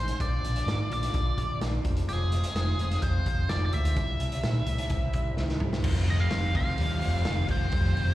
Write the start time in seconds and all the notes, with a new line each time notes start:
Already playing: A1 C4 D#4 G#4 C5
0.00 G#3
0.08 closed hi-hat
0.19 A#1 A#2 D3 A#3 D4 F4 D5, kick, closed hi-hat
0.43 A#1 A#3 D4 F4, closed hi-hat
0.56 closed hi-hat
0.65 G#2 D3 A#3 D4 F4, snare, closed hi-hat
0.90 A#1 A#3 D4 F4 D5, closed hi-hat
1.03 snare, closed hi-hat
1.14 A#1 A#2 D3 A#3 D4 F4, kick, closed hi-hat
1.37 A#1, kick, closed hi-hat
1.61 A#1 D3 A#3 D4 F4, snare, closed hi-hat
1.84 F1 F2 C3 F3 G#3 C4 F4, kick, closed hi-hat
1.97 closed hi-hat
2.08 F1 F2 C3 F3 G#3 C4 G#4, closed hi-hat
2.12 F4
2.32 F3 G#3 C4 F4, closed hi-hat
2.43 closed hi-hat
2.55 F1 F3 G#3 C4, snare, closed hi-hat
2.59 F4
2.79 F1 F3 G#3 C4 F4, closed hi-hat
2.91 snare, closed hi-hat
3.02 F1 F2 C3 F3 G#3 C4 C5, kick, closed hi-hat
3.06 F4
3.26 F1, kick, closed hi-hat
3.49 F1 F3 G#3 C4 F4 D5, snare, closed hi-hat
3.66 D5
3.73 D2 G#3 C4 F4 E5, closed hi-hat
3.77 F3
3.85 closed hi-hat
3.96 C2 C3 E3 G3 C4, kick, closed hi-hat
4.00 E4
4.20 C2 C4 E4, closed hi-hat
4.24 G3
4.32 closed hi-hat
4.43 A#2 E3 G3 C4 E4, snare, closed hi-hat
4.66 C2 G3 C4 E4, closed hi-hat
4.78 closed hi-hat
4.89 C2 C3 E3 G3 C4 E4, kick, closed hi-hat
5.13 C2, kick, closed hi-hat
5.37 C2 E3 G3 C4 E4, snare
5.49 snare
5.60 C2 C4 E4, mid tom
5.64 G3
5.73 snare
5.83 F1 F3 G3 C4 F4 G4 C5 G5, kick, crash
6.07 G3 C4 F4 D#5, open hi-hat
6.21 F5
6.31 F1 F3 G3 C4 F4, snare, open hi-hat
6.55 C2 F3 G3 C4 F4 F5, kick, open hi-hat
6.78 D#2 F3 G3 C4 F4, open hi-hat
7.01 F1 F3 G3 C4 F4, open hi-hat
7.25 F1 F3 G3 C4 F4, snare, open hi-hat
7.48 F1 G3 C4 F4 C5, kick, open hi-hat
7.72 F1 F3 G3 C4, kick, open hi-hat
7.76 F4
7.85 snare
7.97 F1 G3 C4 F4, open hi-hat